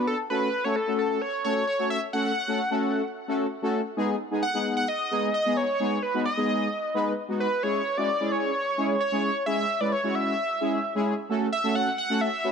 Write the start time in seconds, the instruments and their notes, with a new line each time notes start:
Already playing: analog polysynth B3 D4 F#4 B4
0.07 analog synth lead A4
0.30 analog polysynth A3 C#4 F#4 A4, analog synth lead B4
0.64 analog polysynth A3 C#4 F#4 A4, analog synth lead C#5
0.76 analog synth lead A4
0.87 analog polysynth A3 C#4 F#4 A4
0.99 analog synth lead A4
1.22 analog synth lead C#5
1.44 analog polysynth A3 C#4 F#4 A4, analog synth lead C#5
1.67 analog synth lead C#5
1.79 analog polysynth A3 C#4 F#4 A4
1.90 analog synth lead E5
2.13 analog polysynth A3 C#4 F#4 A4, analog synth lead F#5
2.48 analog polysynth A3 C#4 F#4 A4
2.71 analog polysynth A3 C#4 F#4 A4
3.28 analog polysynth A3 C#4 F#4 A4
3.62 analog polysynth A3 C#4 F#4 A4
3.97 analog polysynth G#3 B3 D#4 G#4
4.31 analog polysynth G#3 B3 D#4 G#4
4.43 analog synth lead F#5
4.54 analog polysynth G#3 B3 D#4 G#4
4.77 analog synth lead F#5
4.88 analog synth lead D#5
5.11 analog polysynth G#3 B3 D#4 G#4
5.34 analog synth lead D#5
5.45 analog polysynth G#3 B3 D#4 G#4
5.57 analog synth lead C#5
5.80 analog polysynth G#3 B3 D#4 G#4
6.03 analog synth lead B4
6.14 analog polysynth G#3 B3 D#4 F#4
6.25 analog synth lead D#5
6.37 analog polysynth G#3 B3 D#4 G#4
6.94 analog polysynth G#3 B3 D#4 B4
7.29 analog polysynth G#3 B3 D#4 F#4
7.40 analog synth lead B4
7.63 analog polysynth G#3 C#4 E4 G#4, analog synth lead C#5
7.97 analog polysynth G#3 C#4 E4 F#4, analog synth lead D5
8.20 analog polysynth G#3 C#4 E4 G#4
8.32 analog synth lead C#5
8.78 analog polysynth G#3 C#4 E4 G#4
9.00 analog synth lead C#5
9.12 analog polysynth G#3 C#4 E4 G#4
9.46 analog polysynth G#3 C#4 E4 G#4, analog synth lead E5
9.81 analog polysynth G#3 C#4 E4 B4, analog synth lead D5
9.92 analog synth lead C#5
10.03 analog polysynth G#3 C#4 E4 F#4
10.15 analog synth lead E5
10.61 analog polysynth G#3 C#4 E4 G#4
10.95 analog polysynth G#3 C#4 E4 G#4
11.29 analog polysynth A3 C#4 F#4 A4
11.52 analog synth lead E5
11.64 analog polysynth A3 C#4 F#4 A4
11.75 analog synth lead F#5
11.98 analog synth lead F#5
12.10 analog polysynth A3 C#4 F#4 A4
12.21 analog synth lead E5
12.44 analog polysynth A3 C#4 F#4 B4